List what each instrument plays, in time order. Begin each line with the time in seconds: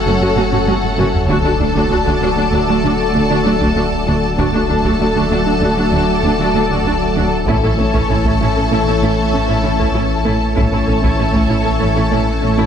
Already playing: sub bass F#1, analog synth pad F#3 C#4 A4 C#5, french horn section A3 F#4, violin section A4 F#5
0.06 double bass section F#1, cello section F#2, synth arpeggio sound A3, viola section C#4
0.21 cello section F#2, synth arpeggio sound F#3, viola section C#4 F#4
0.36 double bass section F#1, cello section F#2, synth arpeggio sound A3, viola section C#4 F#4
0.51 cello section F#2, synth arpeggio sound F#3, viola section C#4 F#4, taiko low-mid
0.67 double bass section F#1, cello section F#2, viola section C#4 F#4, synth arpeggio sound C#4, taiko high
0.84 taiko low-mid
0.98 double bass section F#1, cello section F#2, synth arpeggio sound F#3, viola section C#4 F#4, taiko mid
1.15 taiko low
1.28 sub bass D1, cello section D2, double bass section D2, synth arpeggio sound D3, analog synth pad F#3 A3 A4 D5, french horn section A3 F#4, viola section D4 F#4, violin section A4 A5, taiko
1.44 cello section D2, viola section D4 F#4, synth arpeggio sound D4
1.59 double bass section D2, cello section D2, viola section D4, synth arpeggio sound D4
1.75 cello section D2, synth arpeggio sound D3, viola section D4 F#4, taiko
1.90 cello section D2, double bass section D2, viola section D4 F#4, synth arpeggio sound D4
2.06 cello section D2, synth arpeggio sound D3, viola section D4 F#4, taiko
2.21 cello section D2, double bass section D2, synth arpeggio sound A3, viola section D4 F#4
2.36 cello section D2, synth arpeggio sound D4, viola section D4
2.52 cello section D2, double bass section D2, synth arpeggio sound D3, viola section D4 F#4
2.68 cello section D2, synth arpeggio sound F#3, viola section D4 F#4
2.83 cello section D2, double bass section D2, synth arpeggio sound D3, viola section D4 F#4
3.14 double bass section D2, cello section D2, synth arpeggio sound F#3, viola section D4
3.30 cello section D2, synth arpeggio sound D3, viola section D4 F#4
3.45 cello section D2, double bass section D2, synth arpeggio sound F#3, viola section D4 F#4
3.61 cello section D2, synth arpeggio sound D3, viola section D4 F#4, taiko
3.75 double bass section D2, cello section D2, synth arpeggio sound A3, viola section D4 F#4
4.06 double bass section D2, cello section D2, synth arpeggio sound D3, viola section D4 F#4
4.37 sub bass D1, double bass section D2, cello section D2, synth arpeggio sound D3, analog synth pad F#3 A3 A4 D5, french horn section A3 F#4, viola section D4 F#4, violin section A4 A5, taiko
4.54 cello section D2, viola section D4 F#4, synth arpeggio sound D4
4.68 double bass section D2, cello section D2, viola section D4, synth arpeggio sound D4
4.84 cello section D2, synth arpeggio sound D3, viola section D4 F#4, taiko
5.00 double bass section D2, cello section D2, viola section D4 F#4, synth arpeggio sound D4
5.15 cello section D2, synth arpeggio sound D3, viola section D4 F#4, taiko
5.30 double bass section D2, cello section D2, synth arpeggio sound A3, viola section D4 F#4
5.46 cello section D2, synth arpeggio sound D4, viola section D4
5.61 double bass section D2, cello section D2, synth arpeggio sound D3, viola section D4 F#4
5.77 cello section D2, synth arpeggio sound F#3, viola section D4 F#4
5.92 double bass section D2, cello section D2, synth arpeggio sound D3, viola section D4 F#4
6.23 cello section D2, double bass section D2, synth arpeggio sound F#3, viola section D4
6.39 cello section D2, synth arpeggio sound D3, viola section D4 F#4
6.54 double bass section D2, cello section D2, synth arpeggio sound F#3, viola section D4 F#4
6.70 cello section D2, synth arpeggio sound D3, viola section D4 F#4, taiko
6.85 cello section D2, double bass section D2, synth arpeggio sound A3, viola section D4 F#4
7.16 cello section D2, double bass section D2, synth arpeggio sound D3, viola section D4 F#4
7.46 sub bass A1, double bass section A1, cello section A2, analog synth pad E3 A3 A4 C#5, synth arpeggio sound A3, french horn section C#4 E4, viola section C#4 E4, violin section A4 A5, taiko
7.62 cello section A2, viola section C#4 E4, synth arpeggio sound A4
7.78 double bass section A1, cello section A2, viola section C#4, synth arpeggio sound A4
7.93 cello section A2, synth arpeggio sound A3, viola section C#4 E4, taiko
8.09 double bass section A1, cello section A2, viola section C#4 E4, synth arpeggio sound A4
8.25 cello section A2, synth arpeggio sound A3, viola section C#4 E4, taiko
8.40 double bass section A1, cello section A2, viola section C#4 E4, synth arpeggio sound E4
8.55 cello section A2, viola section C#4, synth arpeggio sound A4
8.70 double bass section A1, cello section A2, synth arpeggio sound A3, viola section C#4 E4
8.86 cello section A2, synth arpeggio sound C#4, viola section C#4 E4
9.01 double bass section A1, cello section A2, synth arpeggio sound A3, viola section C#4 E4
9.33 double bass section A1, cello section A2, synth arpeggio sound C#4, viola section C#4
9.48 cello section A2, synth arpeggio sound A3, viola section C#4 E4
9.63 double bass section A1, cello section A2, viola section C#4 E4, synth arpeggio sound C#4
9.79 cello section A2, synth arpeggio sound A3, viola section C#4 E4, taiko
9.94 double bass section A1, cello section A2, viola section C#4 E4, synth arpeggio sound E4
10.25 double bass section A1, cello section A2, synth arpeggio sound A3, viola section C#4 E4
10.56 sub bass A1, double bass section A1, cello section A2, analog synth pad E3 A3 A4 C#5, synth arpeggio sound A3, viola section C#4 E4, french horn section C#4 E4, violin section A4 A5, taiko
10.72 cello section A2, viola section C#4 E4, synth arpeggio sound A4
10.88 double bass section A1, cello section A2, viola section C#4, synth arpeggio sound A4
11.02 cello section A2, synth arpeggio sound A3, viola section C#4 E4, taiko
11.17 double bass section A1, cello section A2, viola section C#4 E4, synth arpeggio sound A4
11.33 cello section A2, synth arpeggio sound A3, viola section C#4 E4, taiko
11.49 double bass section A1, cello section A2, viola section C#4 E4, synth arpeggio sound E4
11.65 cello section A2, viola section C#4, synth arpeggio sound A4
11.79 double bass section A1, cello section A2, synth arpeggio sound A3, viola section C#4 E4
11.95 cello section A2, viola section C#4 E4, synth arpeggio sound C#4
12.11 double bass section A1, cello section A2, synth arpeggio sound A3, viola section C#4 E4
12.42 double bass section A1, cello section A2, viola section C#4, synth arpeggio sound C#4
12.58 cello section A2, synth arpeggio sound A3, viola section C#4 E4